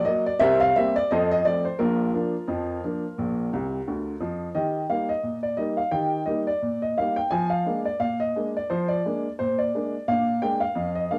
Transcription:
0.05 0.25 F#3 medium
0.05 0.25 A#3 medium
0.05 0.25 D#5 medium
0.26 0.41 D5 medium
0.39 0.69 C2 medium
0.39 0.70 C3 loud
0.39 0.59 A#4 medium
0.39 0.59 C5 medium
0.39 0.60 E5 loud
0.60 0.75 F5 loud
0.76 0.95 G3 medium
0.76 0.95 A#3 medium
0.76 0.95 C4 medium
0.76 0.95 E5 medium
0.96 1.10 D5 medium
1.11 1.40 F2 medium
1.11 1.40 F3 medium
1.11 1.29 A4 medium
1.11 1.29 C5 medium
1.11 1.30 D#5 medium
1.31 1.45 D#5 medium
1.45 1.64 F3 soft
1.45 1.65 A3 soft
1.45 1.65 C4 soft
1.45 1.64 D5 medium
1.65 1.79 C5 medium
1.79 2.09 A#1 medium
1.79 2.09 A#2 medium
1.79 2.13 D4 medium
1.79 4.18 F4 medium
1.79 4.17 A#4 medium
2.14 2.33 F3 soft
2.14 2.33 A#3 soft
2.14 2.33 D4 soft
2.48 2.77 F2 medium
2.48 2.78 F3 medium
2.84 3.03 F3 soft
2.84 3.03 A#3 soft
2.84 3.03 D4 soft
3.18 3.47 A#1 medium
3.18 3.47 A#2 medium
3.53 3.79 C2 medium
3.53 3.79 C3 medium
3.88 4.13 D2 soft
3.88 4.13 D3 soft
4.20 4.47 F2 medium
4.20 4.47 F3 medium
4.55 4.85 D#3 medium
4.55 4.76 G4 soft
4.55 4.83 D#5 medium
4.90 5.09 G3 soft
4.90 5.09 A#3 soft
4.90 5.09 D#4 soft
4.90 5.10 F5 medium
5.09 5.37 D#5 medium
5.23 5.53 A#2 soft
5.43 5.59 D5 medium
5.57 5.77 G3 soft
5.57 5.78 A#3 soft
5.57 5.78 D#4 soft
5.57 5.78 D#5 medium
5.77 5.93 F5 medium
5.92 6.22 D#3 medium
5.92 6.13 G4 soft
5.92 6.20 G5 medium
6.26 6.46 G3 soft
6.26 6.46 A#3 soft
6.26 6.46 D#4 soft
6.26 6.47 D#5 medium
6.47 6.80 D5 medium
6.62 6.92 A#2 medium
6.82 6.97 D#5 medium
6.98 7.17 G3 soft
6.98 7.17 A#3 soft
6.98 7.17 D#4 soft
6.98 7.17 F5 medium
7.16 7.32 G5 medium
7.31 7.61 F3 medium
7.31 7.51 G#5 medium
7.50 7.78 F5 medium
7.66 7.85 G#3 soft
7.66 7.86 A#3 soft
7.66 7.85 D4 soft
7.85 8.01 D5 medium
8.00 8.30 A#2 medium
8.00 8.20 F5 medium
8.20 8.48 D#5 medium
8.36 8.55 G#3 soft
8.36 8.55 A#3 soft
8.36 8.55 D4 soft
8.57 8.71 D5 medium
8.70 8.99 F3 medium
8.70 8.89 C5 medium
8.88 9.28 D5 medium
9.06 9.24 G#3 soft
9.06 9.25 A#3 soft
9.06 9.25 D4 soft
9.39 9.69 A#2 medium
9.39 9.58 C5 medium
9.58 10.05 D5 medium
9.75 9.93 G#3 soft
9.75 9.93 A#3 soft
9.75 9.94 D4 soft
10.08 10.37 A#2 medium
10.08 10.29 D4 soft
10.08 10.41 F5 medium
10.42 10.61 G#3 soft
10.42 10.61 A#3 soft
10.42 10.62 D4 medium
10.42 10.62 G5 medium
10.60 10.88 F5 medium
10.75 11.05 F2 medium
10.95 11.11 D#5 medium
11.11 11.19 G#3 soft
11.11 11.19 A#3 soft
11.11 11.19 D4 soft
11.11 11.19 F5 medium

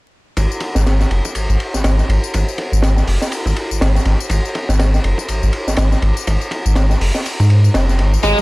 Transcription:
0.37 0.46 G#1 loud
0.37 kick medium
0.37 ride medium
0.37 tambourine soft
0.52 tambourine soft
0.60 kick medium
0.60 ride medium
0.75 1.05 G#1 loud
0.75 snare medium
0.75 tambourine medium
0.87 snare loud
0.87 ride medium
0.87 tambourine medium
1.00 snare soft
1.00 tambourine soft
1.10 1.20 F#1 medium
1.10 ride medium
1.25 kick medium
1.25 tambourine medium
1.35 1.47 G#1 soft
1.35 ride medium
1.35 tambourine medium
1.49 1.56 G#1 medium
1.49 tambourine soft
1.60 ride medium
1.74 1.82 G#1 soft
1.74 snare soft
1.74 tambourine medium
1.84 2.02 G#1 medium
1.84 snare loud
1.84 ride medium
1.84 tambourine medium
1.99 snare soft
1.99 tambourine soft
2.09 2.18 G#1 medium
2.09 ride medium
2.24 tambourine medium
2.34 2.44 G#1 loud
2.34 kick loud
2.34 ride medium
2.34 tambourine medium
2.48 tambourine soft
2.58 kick medium
2.58 ride medium
2.72 3.02 G#1 medium
2.72 tambourine medium
2.82 snare loud
2.82 ride medium
2.82 tambourine medium
2.97 snare soft
2.97 tambourine soft
3.07 3.17 F#1 medium
3.07 open hi-hat medium
3.22 snare soft
3.22 tambourine medium
3.32 ride medium
3.32 tambourine medium
3.46 3.53 G#1 medium
3.46 kick medium
3.46 tambourine soft
3.56 ride medium
3.71 3.79 G#1 soft
3.71 tambourine medium
3.81 3.99 G#1 medium
3.81 snare loud
3.81 ride medium
3.81 tambourine medium
3.95 snare soft
3.95 tambourine soft
4.05 4.15 G#1 loud
4.05 snare soft
4.05 ride medium
4.20 tambourine medium
4.30 4.40 G#1 loud
4.30 kick loud
4.30 ride medium
4.30 tambourine medium
4.45 tambourine soft
4.55 kick medium
4.55 ride medium
4.69 4.98 G#1 loud
4.69 snare soft
4.69 tambourine medium
4.79 snare loud
4.79 ride medium
4.79 tambourine medium
4.94 snare soft
4.94 tambourine soft
5.04 5.14 F#1 medium
5.04 ride medium
5.18 kick medium
5.18 tambourine medium
5.28 5.40 G#1 soft
5.28 ride medium
5.28 tambourine medium
5.43 5.50 G#1 medium
5.43 tambourine soft
5.53 ride medium
5.67 5.76 G#1 soft
5.67 snare soft
5.67 tambourine medium
5.77 5.95 G#1 medium
5.77 snare loud
5.77 ride medium
5.77 tambourine medium
5.92 snare soft
5.92 tambourine soft
6.02 6.12 G#1 medium
6.02 ride medium
6.17 tambourine medium
6.27 6.37 G#1 loud
6.27 kick loud
6.27 ride medium
6.27 tambourine soft
6.41 tambourine soft
6.51 kick medium
6.51 ride medium
6.66 6.95 G#1 medium
6.66 tambourine medium
6.75 snare loud
6.75 ride medium
6.75 tambourine soft
6.90 snare soft
6.90 tambourine soft
7.01 7.10 F#1 medium
7.01 open hi-hat medium
7.15 snare soft
7.15 tambourine medium
7.26 ride medium
7.26 tambourine soft
7.40 7.69 G#2 medium
7.40 kick medium
7.40 tambourine soft
7.50 ride medium
7.64 tambourine medium
7.74 8.01 F#1 medium
7.74 snare loud
7.74 ride medium
7.74 tambourine soft
7.89 snare soft
7.89 tambourine soft
7.99 8.17 G#1 medium
7.99 snare soft
7.99 ride medium
8.14 tambourine medium
8.23 8.33 G#1 loud
8.23 8.37 G#3 medium
8.23 kick loud
8.23 ride medium
8.23 tambourine soft
8.38 tambourine soft

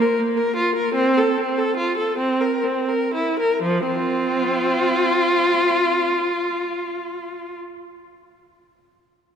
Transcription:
0.01 0.19 A#4 medium
0.19 0.37 A#3 medium
0.37 0.56 A#4 medium
0.56 0.76 F4 medium
0.76 0.96 A#4 medium
0.95 1.15 C4 medium
1.17 1.37 A4 medium
1.37 1.57 C4 medium
1.58 1.77 A4 medium
1.77 1.97 F4 medium
1.98 2.18 A4 medium
2.18 2.39 C4 medium
2.41 2.64 A#4 medium
2.64 2.88 C4 medium
2.88 3.14 A#4 medium
3.14 3.39 E4 medium
3.39 3.63 A#4 medium
3.62 3.86 F3 medium
3.86 5.73 C4 medium
3.86 7.57 F4 medium

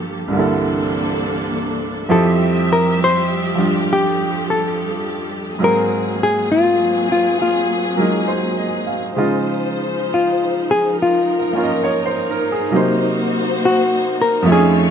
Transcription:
0.00 0.29 G2 soft
0.00 0.31 D3 soft
0.00 0.30 F3 medium
0.00 0.27 A#3 medium
0.00 0.33 A#3 soft
0.00 0.27 F4 medium
0.00 0.33 F4 soft
0.00 0.30 G4 medium
0.00 0.30 A4 medium
0.00 0.34 A4 soft
0.28 2.06 C2 soft
0.28 2.08 G2 soft
0.28 2.06 E3 medium
0.28 2.06 A#3 medium
0.28 2.06 C4 medium
0.28 2.06 A4 medium
0.32 2.09 D3 soft
0.32 2.10 A#3 soft
0.32 2.07 D4 medium
0.37 2.09 E4 soft
0.37 2.12 A4 soft
2.05 5.56 F3 medium
2.05 3.54 F3 soft
2.05 5.55 G3 medium
2.05 5.57 G4 medium
2.05 3.81 E5 medium
2.10 5.61 F2 medium
2.10 5.61 C4 soft
2.10 5.62 E4 medium
2.10 5.61 G4 medium
2.10 2.72 A4 medium
2.73 2.99 A#4 medium
3.04 3.91 C5 medium
3.55 5.60 F3 soft
3.55 5.61 G3 soft
3.55 5.61 D4 soft
3.55 5.62 F4 soft
3.87 5.60 A4 medium
3.93 4.50 G4 medium
4.50 5.32 A4 medium
5.59 9.16 G#2 soft
5.59 7.96 F#3 soft
5.59 9.13 F#3 medium
5.59 9.13 A#3 medium
5.59 7.98 A#3 soft
5.59 9.14 C4 medium
5.59 9.13 G#4 medium
5.63 9.18 C4 soft
5.63 9.18 G#4 medium
5.63 6.23 A#4 medium
6.23 6.49 G#4 medium
6.52 7.11 F4 medium
7.12 7.41 F4 medium
7.42 8.86 F4 medium
7.97 9.16 F#3 soft
7.97 9.15 G#3 soft
7.97 9.17 A#3 soft
7.97 8.44 A#4 soft
8.01 9.17 D#4 soft
8.27 8.84 C5 soft
8.57 9.04 D#5 soft
8.86 9.33 F5 soft
9.15 12.71 C#3 soft
9.15 12.68 F3 medium
9.15 12.71 G#3 soft
9.15 14.90 D#4 medium
9.15 12.72 D#4 soft
9.15 11.55 F4 medium
9.15 10.92 C5 medium
10.14 10.69 F4 medium
10.71 10.96 G#4 medium
10.91 12.68 A#4 medium
11.02 11.57 F4 medium
11.39 11.66 F5 soft
11.53 12.70 A#3 soft
11.53 12.71 C#4 soft
11.53 12.72 F4 soft
11.63 11.93 D#5 soft
11.84 12.25 C#5 medium
12.06 12.44 C5 soft
12.30 12.56 A#4 soft
12.52 12.81 G#4 soft
12.70 14.46 C3 soft
12.70 14.47 F#3 soft
12.70 14.44 A#3 medium
12.70 14.47 A#3 soft
12.70 14.44 F#4 medium
12.70 14.44 C5 medium
12.75 14.49 D#4 soft
12.75 14.49 C5 medium
13.65 14.20 F#4 medium
14.22 14.47 A#4 medium
14.42 14.90 F2 medium
14.42 14.90 F3 soft
14.42 14.90 A3 medium
14.42 14.90 A3 soft
14.42 14.90 F4 medium
14.42 14.90 C#5 medium
14.49 14.90 C#4 soft
14.49 14.90 D#4 soft
14.49 14.90 G#4 medium
14.53 14.90 G#4 medium

